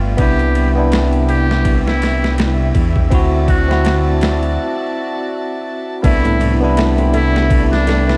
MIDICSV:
0, 0, Header, 1, 8, 480
1, 0, Start_track
1, 0, Tempo, 731707
1, 122, Time_signature, 4, 2, 24, 8
1, 5362, End_track
2, 0, Start_track
2, 0, Title_t, "Violin section"
2, 0, Program_c, 0, 48
2, 0, Note_on_c, 0, 65, 70
2, 0, Note_on_c, 0, 71, 66
2, 0, Note_on_c, 0, 74, 71
2, 0, Note_on_c, 0, 79, 77
2, 94, Note_off_c, 0, 79, 0
2, 105, Note_off_c, 0, 65, 0
2, 105, Note_off_c, 0, 74, 0
2, 119, Note_on_c, 0, 79, 79
2, 122, Note_on_c, 0, 64, 74
2, 122, Note_on_c, 0, 76, 67
2, 2018, Note_off_c, 0, 71, 0
2, 2021, Note_off_c, 0, 79, 0
2, 2023, Note_off_c, 0, 64, 0
2, 2035, Note_on_c, 0, 74, 71
2, 2037, Note_on_c, 0, 81, 87
2, 2039, Note_on_c, 0, 66, 73
2, 3936, Note_off_c, 0, 76, 0
2, 3939, Note_off_c, 0, 74, 0
2, 3940, Note_off_c, 0, 81, 0
2, 3941, Note_off_c, 0, 66, 0
2, 3962, Note_on_c, 0, 76, 67
2, 3962, Note_on_c, 0, 83, 78
2, 3964, Note_on_c, 0, 67, 73
2, 5362, Note_off_c, 0, 67, 0
2, 5362, Note_off_c, 0, 76, 0
2, 5362, Note_off_c, 0, 83, 0
2, 5362, End_track
3, 0, Start_track
3, 0, Title_t, "Synth texture"
3, 0, Program_c, 1, 99
3, 0, Note_on_c, 1, 76, 76
3, 3002, Note_off_c, 1, 76, 0
3, 3966, Note_on_c, 1, 62, 81
3, 5362, Note_off_c, 1, 62, 0
3, 5362, End_track
4, 0, Start_track
4, 0, Title_t, "Muted trumpet"
4, 0, Program_c, 2, 59
4, 127, Note_on_c, 2, 67, 90
4, 461, Note_off_c, 2, 67, 0
4, 850, Note_on_c, 2, 67, 93
4, 1182, Note_off_c, 2, 67, 0
4, 1226, Note_on_c, 2, 64, 93
4, 1535, Note_off_c, 2, 64, 0
4, 2291, Note_on_c, 2, 66, 96
4, 2623, Note_off_c, 2, 66, 0
4, 3961, Note_on_c, 2, 64, 92
4, 4298, Note_off_c, 2, 64, 0
4, 4689, Note_on_c, 2, 64, 100
4, 5022, Note_off_c, 2, 64, 0
4, 5064, Note_on_c, 2, 62, 98
4, 5362, Note_off_c, 2, 62, 0
4, 5362, End_track
5, 0, Start_track
5, 0, Title_t, "Tine electric piano"
5, 0, Program_c, 3, 4
5, 0, Control_c, 3, 64, 127
5, 113, Note_on_c, 3, 59, 92
5, 127, Note_on_c, 3, 62, 81
5, 131, Control_c, 3, 64, 0
5, 141, Note_on_c, 3, 64, 106
5, 228, Control_c, 3, 64, 127
5, 462, Note_off_c, 3, 59, 0
5, 469, Note_off_c, 3, 62, 0
5, 476, Note_off_c, 3, 64, 0
5, 494, Note_on_c, 3, 59, 90
5, 508, Note_on_c, 3, 62, 85
5, 522, Note_on_c, 3, 64, 97
5, 719, Note_off_c, 3, 59, 0
5, 726, Note_off_c, 3, 62, 0
5, 733, Note_off_c, 3, 64, 0
5, 2036, Note_on_c, 3, 60, 99
5, 2049, Note_on_c, 3, 64, 85
5, 2051, Control_c, 3, 64, 0
5, 2063, Note_on_c, 3, 66, 110
5, 2176, Control_c, 3, 64, 127
5, 2383, Note_off_c, 3, 60, 0
5, 2390, Note_off_c, 3, 64, 0
5, 2397, Note_off_c, 3, 66, 0
5, 2415, Note_on_c, 3, 60, 89
5, 2429, Note_on_c, 3, 64, 84
5, 2443, Note_on_c, 3, 66, 109
5, 2639, Note_off_c, 3, 60, 0
5, 2646, Note_off_c, 3, 64, 0
5, 2653, Note_off_c, 3, 66, 0
5, 3955, Note_on_c, 3, 59, 93
5, 3968, Note_on_c, 3, 62, 89
5, 3972, Control_c, 3, 64, 0
5, 3982, Note_on_c, 3, 64, 107
5, 4080, Control_c, 3, 64, 127
5, 4303, Note_off_c, 3, 59, 0
5, 4310, Note_off_c, 3, 62, 0
5, 4316, Note_off_c, 3, 64, 0
5, 4332, Note_on_c, 3, 59, 94
5, 4345, Note_on_c, 3, 62, 87
5, 4358, Note_on_c, 3, 64, 107
5, 4557, Note_off_c, 3, 59, 0
5, 4564, Note_off_c, 3, 62, 0
5, 4571, Note_off_c, 3, 64, 0
5, 5362, End_track
6, 0, Start_track
6, 0, Title_t, "Nylon-string guitar"
6, 0, Program_c, 4, 24
6, 3961, Note_on_c, 4, 57, 99
6, 4085, Note_off_c, 4, 57, 0
6, 4098, Note_on_c, 4, 45, 97
6, 4191, Note_off_c, 4, 45, 0
6, 4198, Note_on_c, 4, 45, 96
6, 4278, Note_off_c, 4, 45, 0
6, 4338, Note_on_c, 4, 55, 70
6, 4431, Note_off_c, 4, 55, 0
6, 4442, Note_on_c, 4, 57, 81
6, 4573, Note_off_c, 4, 57, 0
6, 4579, Note_on_c, 4, 60, 82
6, 4671, Note_off_c, 4, 60, 0
6, 4679, Note_on_c, 4, 57, 100
6, 5150, Note_off_c, 4, 57, 0
6, 5161, Note_on_c, 4, 57, 99
6, 5285, Note_off_c, 4, 57, 0
6, 5295, Note_on_c, 4, 59, 77
6, 5362, Note_off_c, 4, 59, 0
6, 5362, End_track
7, 0, Start_track
7, 0, Title_t, "Detuned saw bass"
7, 0, Program_c, 5, 39
7, 0, Note_on_c, 5, 31, 96
7, 103, Note_off_c, 5, 31, 0
7, 122, Note_on_c, 5, 36, 99
7, 1783, Note_off_c, 5, 36, 0
7, 1801, Note_on_c, 5, 40, 87
7, 2017, Note_off_c, 5, 40, 0
7, 2043, Note_on_c, 5, 38, 100
7, 3002, Note_off_c, 5, 38, 0
7, 3960, Note_on_c, 5, 36, 99
7, 5362, Note_off_c, 5, 36, 0
7, 5362, End_track
8, 0, Start_track
8, 0, Title_t, "Drums"
8, 118, Note_on_c, 9, 51, 92
8, 120, Note_on_c, 9, 36, 109
8, 184, Note_off_c, 9, 51, 0
8, 186, Note_off_c, 9, 36, 0
8, 258, Note_on_c, 9, 51, 38
8, 324, Note_off_c, 9, 51, 0
8, 362, Note_on_c, 9, 51, 67
8, 428, Note_off_c, 9, 51, 0
8, 602, Note_on_c, 9, 51, 80
8, 612, Note_on_c, 9, 38, 115
8, 667, Note_off_c, 9, 51, 0
8, 678, Note_off_c, 9, 38, 0
8, 739, Note_on_c, 9, 51, 42
8, 805, Note_off_c, 9, 51, 0
8, 844, Note_on_c, 9, 51, 60
8, 909, Note_off_c, 9, 51, 0
8, 991, Note_on_c, 9, 38, 53
8, 1057, Note_off_c, 9, 38, 0
8, 1082, Note_on_c, 9, 36, 97
8, 1083, Note_on_c, 9, 51, 83
8, 1147, Note_off_c, 9, 36, 0
8, 1148, Note_off_c, 9, 51, 0
8, 1230, Note_on_c, 9, 38, 48
8, 1296, Note_off_c, 9, 38, 0
8, 1324, Note_on_c, 9, 51, 69
8, 1334, Note_on_c, 9, 38, 53
8, 1389, Note_off_c, 9, 51, 0
8, 1400, Note_off_c, 9, 38, 0
8, 1471, Note_on_c, 9, 38, 53
8, 1536, Note_off_c, 9, 38, 0
8, 1562, Note_on_c, 9, 51, 83
8, 1572, Note_on_c, 9, 38, 112
8, 1627, Note_off_c, 9, 51, 0
8, 1638, Note_off_c, 9, 38, 0
8, 1802, Note_on_c, 9, 36, 90
8, 1802, Note_on_c, 9, 51, 66
8, 1867, Note_off_c, 9, 51, 0
8, 1868, Note_off_c, 9, 36, 0
8, 1940, Note_on_c, 9, 36, 85
8, 2006, Note_off_c, 9, 36, 0
8, 2043, Note_on_c, 9, 36, 112
8, 2045, Note_on_c, 9, 51, 89
8, 2108, Note_off_c, 9, 36, 0
8, 2111, Note_off_c, 9, 51, 0
8, 2283, Note_on_c, 9, 36, 91
8, 2284, Note_on_c, 9, 51, 65
8, 2349, Note_off_c, 9, 36, 0
8, 2349, Note_off_c, 9, 51, 0
8, 2434, Note_on_c, 9, 38, 46
8, 2499, Note_off_c, 9, 38, 0
8, 2524, Note_on_c, 9, 51, 85
8, 2534, Note_on_c, 9, 38, 107
8, 2589, Note_off_c, 9, 51, 0
8, 2600, Note_off_c, 9, 38, 0
8, 2764, Note_on_c, 9, 51, 73
8, 2774, Note_on_c, 9, 38, 98
8, 2829, Note_off_c, 9, 51, 0
8, 2840, Note_off_c, 9, 38, 0
8, 2904, Note_on_c, 9, 51, 39
8, 2970, Note_off_c, 9, 51, 0
8, 3961, Note_on_c, 9, 36, 108
8, 3962, Note_on_c, 9, 51, 86
8, 4027, Note_off_c, 9, 36, 0
8, 4028, Note_off_c, 9, 51, 0
8, 4102, Note_on_c, 9, 51, 42
8, 4167, Note_off_c, 9, 51, 0
8, 4204, Note_on_c, 9, 51, 66
8, 4269, Note_off_c, 9, 51, 0
8, 4442, Note_on_c, 9, 51, 88
8, 4452, Note_on_c, 9, 38, 113
8, 4507, Note_off_c, 9, 51, 0
8, 4518, Note_off_c, 9, 38, 0
8, 4580, Note_on_c, 9, 51, 43
8, 4645, Note_off_c, 9, 51, 0
8, 4682, Note_on_c, 9, 51, 67
8, 4747, Note_off_c, 9, 51, 0
8, 4829, Note_on_c, 9, 38, 55
8, 4895, Note_off_c, 9, 38, 0
8, 4922, Note_on_c, 9, 36, 106
8, 4923, Note_on_c, 9, 51, 78
8, 4987, Note_off_c, 9, 36, 0
8, 4989, Note_off_c, 9, 51, 0
8, 5071, Note_on_c, 9, 38, 47
8, 5137, Note_off_c, 9, 38, 0
8, 5164, Note_on_c, 9, 51, 69
8, 5174, Note_on_c, 9, 38, 57
8, 5229, Note_off_c, 9, 51, 0
8, 5240, Note_off_c, 9, 38, 0
8, 5310, Note_on_c, 9, 38, 52
8, 5362, Note_off_c, 9, 38, 0
8, 5362, End_track
0, 0, End_of_file